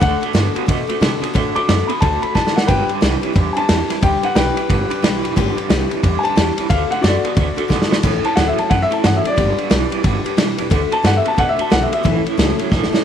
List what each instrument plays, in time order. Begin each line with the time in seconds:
0.00 upright bass D2, steel-string acoustic guitar D3 A3 D4 F#4 A4, clean electric guitar D3 A3, upright piano F#5, kick, ride
0.21 clean electric guitar D3 A3, steel-string acoustic guitar D4 F#4 A4, muted upright bass stroke, ride
0.33 upright bass G2, steel-string acoustic guitar D3 A3 D4 F#4 A4, clean electric guitar D3 B3, snare, ride
0.54 clean electric guitar D3 B3, steel-string acoustic guitar D4 F#4 A4, muted upright bass stroke, ride
0.66 upright bass B2, clean electric guitar D3 A3, steel-string acoustic guitar A3 D4 F#4 A4, kick, ride
0.87 clean electric guitar D3 A3, steel-string acoustic guitar D4 F#4 A4, muted upright bass stroke, ride
1.00 upright bass C3, steel-string acoustic guitar D3 A3 D4 F#4 A4, clean electric guitar D3 B3, snare, ride
1.21 clean electric guitar D3 B3, steel-string acoustic guitar D4 F#4 A4, muted upright bass stroke, ride
1.34 upright bass A2, steel-string acoustic guitar D3 A3 D4 F#4 A4, clean electric guitar D3 A3, kick, ride
1.55 clean electric guitar D3 A3, steel-string acoustic guitar D4 F#4 A4, upright piano D6, muted upright bass stroke, ride
1.68 upright bass F#2, clean electric guitar D3 B3, steel-string acoustic guitar D3 A3 D4 F#4 A4, snare, ride
1.88 clean electric guitar D3 B3, steel-string acoustic guitar F#4 A4, upright piano B5, ride
1.92 steel-string acoustic guitar D4
2.01 upright bass D2, clean electric guitar D3 A3, steel-string acoustic guitar A3 D4 F#4 A4, upright piano A5, kick, ride
2.22 clean electric guitar D3 A3, steel-string acoustic guitar D4 F#4 A4, upright piano B5, muted upright bass stroke, ride
2.35 upright bass F#2, steel-string acoustic guitar D3 A3 D4 F#4 A4, clean electric guitar D3 B3, upright piano A5, kick, snare
2.47 snare
2.55 upright bass C2, clean electric guitar D3 B3, steel-string acoustic guitar F#4 A4, upright piano F#5, snare
2.67 upright bass G1, clean electric guitar G2 D3, steel-string acoustic guitar G3 D4 G4 B4, upright piano B4 G5, kick, ride
2.88 clean electric guitar G2 D3, steel-string acoustic guitar D4 G4 B4, muted upright bass stroke, ride
3.01 upright bass C2, clean electric guitar G2 E3, steel-string acoustic guitar G3 D4 G4 B4, snare, ride
3.21 clean electric guitar G2 E3, steel-string acoustic guitar D4 G4 B4, ride
3.34 upright bass E2, clean electric guitar G2 D3, steel-string acoustic guitar G3 D4 G4 B4, kick, ride
3.53 clean electric guitar G2 D3, steel-string acoustic guitar G4 B4, upright piano G#5, muted upright bass stroke, ride
3.57 steel-string acoustic guitar D4, upright piano A5
3.68 upright bass E2, clean electric guitar G2 E3, steel-string acoustic guitar G3 D4 G4 B4, snare, ride
3.89 clean electric guitar G2 E3, steel-string acoustic guitar D4 G4 B4, muted upright bass stroke, snare, ride
4.01 upright bass D2, clean electric guitar G2 D3, steel-string acoustic guitar G3 D4 G4 B4, upright piano G5, kick, ride
4.23 clean electric guitar G2 D3, steel-string acoustic guitar D4 G4 B4, upright piano F#5, muted upright bass stroke, ride
4.35 upright bass B1, clean electric guitar G2 E3, steel-string acoustic guitar G3 D4 G4 B4, upright piano B4 G5, snare, ride
4.56 clean electric guitar G2 E3, steel-string acoustic guitar D4 G4 B4, muted upright bass stroke, ride
4.68 upright bass G1, clean electric guitar G2 D3, steel-string acoustic guitar G3 D4 G4 B4, kick, ride
4.90 clean electric guitar G2 D3, steel-string acoustic guitar G4 B4, muted upright bass stroke, ride
4.94 steel-string acoustic guitar D4
5.02 upright bass B1, clean electric guitar G2 E3, steel-string acoustic guitar G3 D4 G4 B4, snare, ride
5.23 upright bass E1, clean electric guitar G2 E3, steel-string acoustic guitar D4 G4 B4, ride
5.36 upright bass G1, clean electric guitar G2 D3, steel-string acoustic guitar G3 D4 G4 B4, kick, ride
5.56 clean electric guitar G2 D3, steel-string acoustic guitar G4 B4, muted upright bass stroke, ride
5.61 steel-string acoustic guitar D4
5.69 upright bass C2, clean electric guitar G2 E3, steel-string acoustic guitar G3 D4 G4 B4, snare, ride
5.89 clean electric guitar G2 E3, steel-string acoustic guitar D4 G4 B4, ride
6.03 upright bass E2, clean electric guitar G2 D3, steel-string acoustic guitar G3 D4 G4 B4, kick, ride
6.19 upright piano G#5
6.23 clean electric guitar G2 D3, steel-string acoustic guitar D4 G4 B4, upright piano A5, muted upright bass stroke, ride
6.36 upright bass E2, clean electric guitar G2 E3, steel-string acoustic guitar G3 D4 G4 B4, snare, ride
6.56 clean electric guitar G2 E3, steel-string acoustic guitar D4 G4 B4, muted upright bass stroke, ride
6.69 upright bass D2, steel-string acoustic guitar D3 A3 D4 F#4 A4, clean electric guitar D3 A3, upright piano F5, kick, ride
6.90 clean electric guitar D3 A3, steel-string acoustic guitar D4 F#4 A4, upright piano F#5, muted upright bass stroke, ride
7.01 upright bass F#2, steel-string acoustic guitar D3 A3 D4 F#4 A4, clean electric guitar D3 B3, upright piano F#4 D5, snare, ride
7.23 clean electric guitar D3 B3, steel-string acoustic guitar D4 F#4 A4, ride
7.35 upright bass D2, clean electric guitar D3 A3, steel-string acoustic guitar A3 D4 F#4 A4, kick, ride
7.56 clean electric guitar D3 A3, steel-string acoustic guitar D4 F#4 A4, muted upright bass stroke, ride
7.68 upright bass F#2, steel-string acoustic guitar D3 A3 D4 F#4 A4, clean electric guitar D3 B3, kick, snare
7.82 snare
7.89 upright bass C2, clean electric guitar D3 B3, steel-string acoustic guitar D4 F#4 A4, snare
8.03 upright bass A1, steel-string acoustic guitar A2 E3 A3 C#4 E4 A4, clean electric guitar A2 E3, kick, crash, ride
8.24 clean electric guitar A2 E3, steel-string acoustic guitar A3 C#4 E4 A4, upright piano A5, muted upright bass stroke, ride
8.36 upright bass D2, steel-string acoustic guitar A2 E3 A3 C#4 E4 A4, clean electric guitar A2 F#3, upright piano F#5, snare, ride
8.48 upright piano E5
8.57 clean electric guitar A2 F#3, steel-string acoustic guitar A3 C#4 E4 A4, upright piano A5, muted upright bass stroke, ride
8.70 upright bass F#2, clean electric guitar A2 E3, steel-string acoustic guitar A3 C#4 E4, upright piano F#5, kick, ride
8.74 steel-string acoustic guitar A4
8.82 upright piano E5
8.91 clean electric guitar A2 E3, steel-string acoustic guitar A3 C#4 E4 A4, upright piano A5, ride
9.03 upright bass G2, clean electric guitar A2 F#3, steel-string acoustic guitar A2 E3 A3 C#4 E4 A4, upright piano F#5, snare, ride
9.16 upright piano E5
9.24 clean electric guitar A2 F#3, steel-string acoustic guitar A3 C#4 E4 A4, upright piano D5, muted upright bass stroke, ride
9.36 upright bass G1, clean electric guitar G2 D3, steel-string acoustic guitar G3 D4 G4 B4, kick, ride
9.57 clean electric guitar G2 D3, steel-string acoustic guitar D4 G4 B4, muted upright bass stroke, ride
9.70 upright bass B1, clean electric guitar G2 E3, steel-string acoustic guitar G3 D4 G4 B4, snare, ride
9.90 clean electric guitar G2 E3, steel-string acoustic guitar D4 G4 B4, ride
10.03 upright bass G1, clean electric guitar G2 D3, steel-string acoustic guitar G3 D4 G4 B4, kick, ride
10.24 clean electric guitar G2 D3, steel-string acoustic guitar D4 G4 B4, muted upright bass stroke, ride
10.37 upright bass B1, clean electric guitar G2 E3, steel-string acoustic guitar G3 D4 G4 B4, snare, ride
10.57 upright bass E1, clean electric guitar G2 E3, steel-string acoustic guitar D4 G4 B4, ride
10.70 upright bass D2, steel-string acoustic guitar D3 A3 D4 F#4 A4, clean electric guitar D3 A3, kick, ride
10.91 clean electric guitar D3 A3, steel-string acoustic guitar D4 F#4 A4, upright piano A5, muted upright bass stroke, ride
11.03 upright bass G2, steel-string acoustic guitar D3 A3 D4 F#4 A4, clean electric guitar D3 B3, upright piano F#5, snare, ride
11.17 upright piano E5
11.23 clean electric guitar D3 B3, steel-string acoustic guitar D4 F#4 A4, ride
11.28 upright piano A5
11.36 upright bass B2, clean electric guitar D3 A3, steel-string acoustic guitar A3 D4 F#4 A4, upright piano F#5, kick, ride
11.49 upright piano E5
11.56 clean electric guitar D3 A3, steel-string acoustic guitar D4 F#4 A4, muted upright bass stroke, ride
11.61 upright piano A5
11.70 upright bass B1, steel-string acoustic guitar D3 A3 D4 F#4 A4, clean electric guitar D3 B3, upright piano F#5, snare, ride
11.83 upright piano E5
11.91 clean electric guitar D3 B3, steel-string acoustic guitar D4 F#4 A4, upright piano E5, muted upright bass stroke, ride
12.03 upright bass A1, steel-string acoustic guitar A2 E3 A3 C#4 E4 A4, clean electric guitar A2 E3, kick, ride
12.24 clean electric guitar A2 E3, steel-string acoustic guitar A3 C#4 E4 A4, muted upright bass stroke, ride
12.37 upright bass C#2, steel-string acoustic guitar A2 E3 A3 C#4 E4 A4, clean electric guitar A2 F#3, snare, ride
12.58 clean electric guitar A2 F#3, steel-string acoustic guitar A3 C#4 E4 A4, ride
12.70 upright bass A1, clean electric guitar A2 E3, steel-string acoustic guitar A3 C#4 E4 A4, kick, snare
12.83 snare
12.91 clean electric guitar A2 E3, steel-string acoustic guitar A3 C#4 E4 A4, muted upright bass stroke, snare